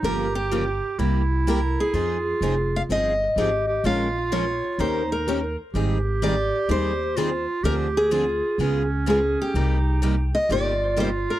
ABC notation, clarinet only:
X:1
M:4/4
L:1/8
Q:"Swing" 1/4=126
K:Cm
V:1 name="Clarinet"
G4 =E4 | F4- F z G G | F4 E3 z | G6 F2 |
G2 F2 _D4 | E3 z F4 |]